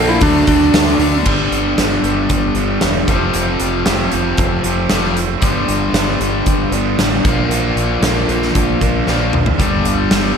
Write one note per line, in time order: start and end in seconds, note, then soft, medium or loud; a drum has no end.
0.00 0.18 A#1 loud
0.00 0.20 A#2 medium
0.00 0.21 A#2 medium
0.00 0.20 D3 medium
0.00 0.20 F3 medium
0.00 0.21 F3 medium
0.00 0.20 A#3 medium
0.00 0.22 A#3 medium
0.00 0.20 D4 medium
0.09 0.21 E4 loud
0.21 0.45 D2 medium
0.21 0.71 D3 loud
0.21 0.48 F#3 loud
0.21 0.46 A3 loud
0.21 0.46 D4 loud
0.21 kick loud
0.21 open hi-hat medium
0.47 0.70 D2 medium
0.47 0.72 F#3 medium
0.47 0.73 A3 medium
0.47 0.73 D4 medium
0.47 kick medium
0.47 open hi-hat medium
0.72 0.97 D2 medium
0.72 1.23 D3 loud
0.72 1.00 F#3 loud
0.72 0.99 A3 loud
0.72 0.97 D4 loud
0.72 snare loud
0.72 open hi-hat medium
0.98 1.22 D2 medium
0.98 1.25 F#3 medium
0.98 1.24 A3 medium
0.98 1.24 D4 medium
0.98 open hi-hat medium
1.04 1.25 D3 medium
1.25 1.48 G1 medium
1.25 1.76 G2 medium
1.25 1.77 D3 medium
1.25 1.77 G3 medium
1.25 1.78 B3 medium
1.25 1.78 D4 medium
1.25 kick medium
1.25 crash medium
1.51 1.74 G1 medium
1.51 closed hi-hat soft
1.78 2.00 G1 medium
1.78 2.30 G2 medium
1.78 2.30 D3 medium
1.78 2.04 G3 medium
1.78 2.04 B3 medium
1.78 2.02 D4 medium
1.78 snare loud
1.78 closed hi-hat medium
2.03 2.26 G1 medium
2.03 2.56 G3 soft
2.03 2.55 B3 medium
2.03 2.54 D4 medium
2.03 closed hi-hat soft
2.29 2.53 G1 medium
2.29 kick medium
2.29 closed hi-hat medium
2.55 2.78 G1 medium
2.55 2.81 G3 soft
2.55 2.82 B3 medium
2.55 2.82 D4 medium
2.55 closed hi-hat medium
2.81 3.04 E1 medium
2.81 3.07 D3 medium
2.81 3.07 G3 medium
2.81 3.07 B3 medium
2.81 3.07 D4 medium
2.81 snare medium
2.81 closed hi-hat medium
3.08 3.31 F1 medium
3.08 3.33 F2 medium
3.08 3.34 C3 medium
3.08 3.34 F3 medium
3.08 3.35 A3 medium
3.08 3.35 C4 medium
3.08 kick medium
3.08 closed hi-hat medium
3.34 3.56 F1 medium
3.34 3.85 F2 medium
3.34 3.85 C3 medium
3.34 3.86 F3 medium
3.34 3.86 A3 medium
3.34 3.87 C4 medium
3.34 closed hi-hat medium
3.60 3.83 F1 medium
3.60 closed hi-hat medium
3.86 4.09 F1 medium
3.86 4.38 F2 medium
3.86 4.39 C3 medium
3.86 4.13 F3 medium
3.86 4.12 A3 medium
3.86 4.11 C4 medium
3.86 snare loud
3.86 closed hi-hat medium
4.12 4.35 F1 medium
4.12 4.65 F3 medium
4.12 4.64 A3 medium
4.12 4.63 C4 medium
4.12 closed hi-hat medium
4.37 4.60 F1 medium
4.37 kick medium
4.37 closed hi-hat medium
4.64 4.86 F1 medium
4.64 4.90 F3 soft
4.64 4.91 A3 medium
4.64 4.91 C4 medium
4.64 closed hi-hat medium
4.89 5.35 F1 medium
4.89 5.15 F2 medium
4.89 5.41 C3 medium
4.89 5.42 F3 medium
4.89 5.42 A3 medium
4.89 5.42 C4 medium
4.89 snare loud
4.89 closed hi-hat medium
5.17 closed hi-hat medium
5.42 5.65 G1 medium
5.42 5.93 G2 medium
5.42 5.94 D3 medium
5.42 5.94 G3 medium
5.42 5.95 B3 medium
5.42 5.96 D4 medium
5.42 kick loud
5.42 closed hi-hat medium
5.68 5.91 G1 medium
5.68 closed hi-hat medium
5.93 6.16 G1 medium
5.93 6.47 G2 medium
5.93 6.47 D3 medium
5.93 6.20 G3 medium
5.93 6.19 B3 medium
5.93 6.19 D4 loud
5.93 snare loud
5.93 closed hi-hat medium
6.20 6.43 G1 medium
6.20 6.74 G3 medium
6.20 6.73 B3 medium
6.20 6.73 D4 medium
6.20 closed hi-hat medium
6.46 6.69 G1 medium
6.46 kick medium
6.46 closed hi-hat medium
6.71 6.94 G1 medium
6.71 7.00 B3 medium
6.71 7.01 D4 medium
6.71 closed hi-hat medium
6.76 7.00 G3 medium
6.99 7.21 A1 medium
6.99 7.24 D3 medium
6.99 7.24 G3 medium
6.99 7.25 B3 medium
6.99 7.25 D4 medium
6.99 snare medium
6.99 closed hi-hat medium
7.24 7.47 A#1 medium
7.24 7.50 A#2 medium
7.24 7.51 D3 medium
7.24 7.52 F3 medium
7.24 7.52 A#3 medium
7.24 7.53 D4 medium
7.24 kick loud
7.24 closed hi-hat medium
7.49 7.72 A#1 medium
7.49 8.02 A#2 medium
7.49 8.03 D3 medium
7.49 8.03 F3 medium
7.49 8.04 A#3 medium
7.49 closed hi-hat medium
7.53 8.05 D4 medium
7.76 7.99 A#1 medium
7.76 closed hi-hat soft
8.01 8.24 A#1 medium
8.01 8.55 A#2 medium
8.01 8.56 D3 medium
8.01 8.29 F3 medium
8.01 8.29 A#3 medium
8.01 8.28 D4 loud
8.01 snare loud
8.01 closed hi-hat medium
8.28 8.51 A#1 medium
8.28 8.82 F3 medium
8.28 8.81 A#3 medium
8.28 8.80 D4 medium
8.28 closed hi-hat medium
8.42 snare soft
8.55 8.78 A#1 medium
8.55 kick medium
8.55 closed hi-hat medium
8.81 9.04 A#1 medium
8.81 9.07 F3 medium
8.81 9.08 A#3 medium
8.81 9.08 D4 medium
8.81 kick medium
8.81 closed hi-hat medium
9.07 9.52 A#1 medium
9.07 9.32 A#2 medium
9.07 9.58 D3 medium
9.07 9.58 F3 medium
9.07 9.58 A#3 medium
9.07 9.59 D4 medium
9.07 snare soft
9.33 mid tom medium
9.46 floor tom medium
9.59 9.82 G1 medium
9.59 10.09 G2 medium
9.59 10.10 D3 medium
9.59 10.11 G3 medium
9.59 10.11 B3 medium
9.59 10.11 D4 medium
9.59 kick medium
9.59 closed hi-hat medium
9.85 10.07 G1 medium
9.85 closed hi-hat medium
10.10 10.34 G1 medium
10.10 10.38 G2 medium
10.10 10.38 D3 medium
10.10 10.37 G3 medium
10.10 10.36 B3 medium
10.10 10.36 D4 medium
10.10 snare loud
10.10 closed hi-hat medium